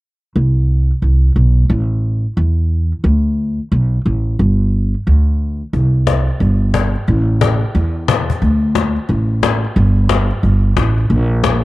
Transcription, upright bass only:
0.36 C2
1.02 C2
1.36 B1
1.70 A1
2.37 E2
3.04 D2
3.72 B1
4.06 A1
4.39 G1
5.07 D2
5.73 C2
6.40 G1
7.08 A1
7.75 E2
8.42 D2
9.09 A1
9.76 G1
10.43 G1
10.77 A1
11.10 A#1

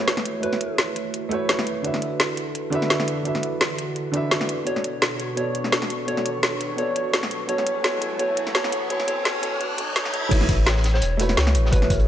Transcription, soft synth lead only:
0.43 B4
4.67 C#5
5.37 C#5
6.08 C#5
6.78 C#5
7.49 C#5
7.84 C#5
8.19 C#5
8.55 C#5
8.90 C#5
9.08 C#5
9.25 C#5
9.43 C#5
9.60 C#5
9.78 C#5
9.96 C#5
10.13 C#5
10.31 C#5
10.94 C#5
11.72 B4

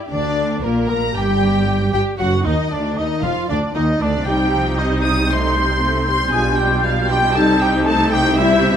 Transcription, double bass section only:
0.11 D2
0.63 A#1
0.89 A#1
1.15 G1
1.93 G1
2.19 F#1
2.46 D#2
2.72 D2
2.98 D#2
3.24 F1
3.50 D2
3.75 D#2
4.02 D2
4.27 C2
6.34 B1
7.36 C2

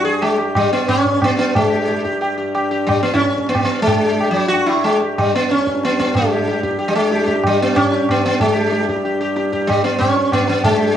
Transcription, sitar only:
0.05 G#4
0.22 G#3
0.38 G4
0.56 G3
0.73 B3
0.89 C#4
1.24 B3
1.39 B3
1.56 G#3
1.72 G4
1.88 G4
2.04 G4
2.21 G4
2.38 G4
2.55 G4
2.71 G4
2.87 G3
3.03 B3
3.13 C#4 E4
3.49 B3
3.65 B3
3.82 G#3
4.02 G4
4.19 G4
4.31 F#3
4.49 F#4
4.66 E4
4.84 G#3
5.02 G4
5.18 G3
5.35 B3
5.51 C#4
5.84 B3
5.99 B3
6.16 G#3
6.31 G4
6.49 G4
6.63 G4
6.78 G4
6.88 G3
6.95 G#3
7.12 G4
7.26 G4
7.47 G3
7.62 B3
7.76 C#4
7.92 G4
8.11 B3
8.26 B3
8.41 G#3
8.56 G4
8.72 G4
8.89 G4
9.05 G4
9.21 G4
9.36 G4
9.52 G4
9.67 G3
9.84 B3
9.99 C#4
10.33 B3
10.49 B3
10.64 G#3
10.79 G4

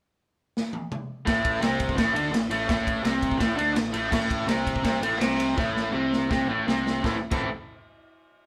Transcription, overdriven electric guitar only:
1.26 A2 A3
1.61 C3 C4
1.97 A2 A3
2.14 D3 D4
2.33 A2
2.50 A2 A3
2.68 A2 A3
3.03 C3 C4
3.38 A2 A3
3.57 D3 D4
3.75 A2
3.93 A2 A3
4.11 A2 A3
4.47 C3 C4
4.83 C3 C4
5.01 A2 A3
5.20 C3 C4
5.56 A2 A3
5.93 C3 C4
6.30 C3 C4
6.48 A2 A3
6.67 C3 C4
7.04 A2 E3 C4 E4 A4
7.31 A2 E3 C4 E4 A4

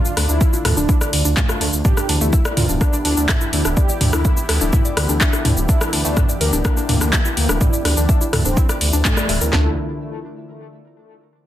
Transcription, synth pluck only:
0.17 D4
0.29 D4
0.41 F5
0.53 F4
0.65 A4
0.77 D4
0.89 E4
1.01 D5
1.25 D4
1.49 F4
1.61 D4
1.85 D4
1.97 D4
2.09 D4
2.21 A3
2.33 E5
2.45 D5
2.57 A#4
2.69 D4
2.81 D4
2.93 D4
3.05 D4
3.17 D4
3.29 E5
3.41 E4
3.65 D4
3.77 D5
3.89 D5
4.01 D4
4.13 D4
4.25 E5
4.37 E4
4.49 A4
4.61 D4
4.73 E4
4.85 D5
5.09 D4
5.21 E5
5.33 E4
5.45 D4
5.69 D4
5.81 D4
5.93 D4
6.05 A3
6.17 E5
6.29 D5
6.41 A#4
6.53 D4
6.65 D4
6.77 D4
6.89 D4
7.01 D4
7.13 E5
7.25 E4
7.49 D4
7.61 D5
7.73 D5
7.85 D4
7.97 D4
8.09 E5
8.21 E4
8.33 A4
8.45 D4
8.57 E4
8.69 D5
8.93 D4
9.17 D5
9.29 E5
9.41 A#4
9.53 D4

